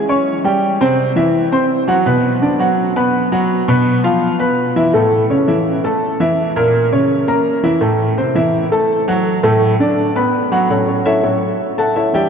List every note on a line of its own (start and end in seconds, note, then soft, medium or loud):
0.09 0.38 C#4 medium
0.09 0.38 C#5 medium
0.09 0.39 C#6 medium
0.44 0.74 G3 medium
0.44 0.74 G4 medium
0.44 0.74 G5 medium
0.81 1.10 C3 medium
0.81 1.10 C4 medium
0.81 1.10 C5 medium
1.16 1.46 E3 medium
1.16 1.46 E4 medium
1.16 1.46 E5 medium
1.52 1.82 C4 medium
1.52 1.82 C5 medium
1.52 1.82 C6 medium
1.88 2.03 F#3 medium
1.88 2.03 F#4 medium
1.88 2.03 F#5 medium
2.06 2.36 B2 medium
2.06 2.36 B3 medium
2.06 2.36 B4 medium
2.42 2.57 D3 medium
2.42 2.57 D4 medium
2.42 2.57 D5 medium
2.59 2.89 F#3 medium
2.59 2.90 F#4 medium
2.59 2.90 F#5 medium
2.96 3.26 B3 medium
2.96 3.26 B4 medium
2.96 3.26 B5 medium
3.32 3.62 F#3 medium
3.32 3.62 F#4 medium
3.32 3.62 F#5 medium
3.68 3.98 B2 medium
3.68 3.98 B3 medium
3.68 3.98 B4 medium
4.04 4.33 F3 medium
4.04 4.34 F4 medium
4.04 4.34 F5 medium
4.39 4.69 B3 medium
4.39 4.69 B4 medium
4.39 4.70 B5 medium
4.76 4.91 E3 medium
4.76 4.91 E4 medium
4.76 4.91 E5 medium
4.94 5.23 A2 medium
4.94 5.24 A3 medium
4.94 5.24 A4 medium
5.30 5.45 C#3 medium
5.30 5.45 C#4 medium
5.30 5.45 C#5 medium
5.48 5.77 E3 medium
5.48 5.78 E4 medium
5.48 5.78 E5 medium
5.84 6.14 A3 medium
5.84 6.14 A4 medium
5.84 6.14 A5 medium
6.20 6.50 E3 medium
6.20 6.50 E4 medium
6.20 6.50 E5 medium
6.56 6.86 A#2 medium
6.56 6.86 A#3 medium
6.56 6.86 A#4 medium
6.92 7.22 C#3 medium
6.92 7.22 C#4 medium
6.92 7.22 C#5 medium
7.28 7.57 A#3 medium
7.28 7.57 A#4 medium
7.28 7.58 A#5 medium
7.63 7.78 E3 medium
7.63 7.78 E4 medium
7.63 7.79 E5 medium
7.81 8.11 A2 medium
7.81 8.11 A3 medium
7.81 8.11 A4 medium
8.17 8.32 C3 medium
8.17 8.33 C4 medium
8.17 8.33 C5 medium
8.35 8.65 E3 medium
8.35 8.65 E4 medium
8.35 8.65 E5 medium
8.72 9.01 A3 medium
8.72 9.01 A4 medium
8.72 9.01 A5 medium
9.08 9.37 F#3 medium
9.08 9.37 F#4 medium
9.08 9.38 F#5 medium
9.43 9.73 A2 loud
9.43 9.73 A3 loud
9.43 9.73 A4 medium
9.80 10.09 D3 medium
9.80 10.09 D4 medium
9.80 10.10 D5 medium
10.16 10.45 B3 medium
10.16 10.45 B4 medium
10.16 10.46 B5 medium
10.52 10.66 F#3 medium
10.52 10.67 F#4 medium
10.52 10.67 F#5 medium
10.69 11.21 A2 soft
10.69 11.22 F#3 soft
10.69 10.87 C#4 medium
10.69 10.86 F#4 medium
10.69 10.87 A4 medium
10.69 10.86 C#5 medium
10.69 10.87 F#5 medium
10.88 11.05 C#4 soft
10.88 11.05 F#4 soft
10.88 11.05 A4 soft
10.88 11.04 C#5 medium
11.06 11.23 E4 medium
11.06 11.22 A4 medium
11.06 11.22 C#5 medium
11.06 11.23 E5 medium
11.23 11.40 A2 soft
11.23 11.40 F#3 soft
11.23 11.40 C#4 soft
11.23 11.57 F#4 medium
11.23 11.57 A4 medium
11.23 11.57 C#5 medium
11.78 11.95 A4 medium
11.78 11.94 E5 medium
11.78 11.96 F#5 medium
11.78 11.95 A5 medium
11.96 12.14 E4 medium
11.96 12.14 A4 medium
11.96 12.14 C#5 medium
11.96 12.13 E5 medium
12.13 12.29 E3 soft
12.13 12.29 G3 soft
12.13 12.29 D4 medium
12.13 12.29 G4 medium
12.13 12.29 D5 medium
12.13 12.29 E5 medium
12.13 12.29 G5 medium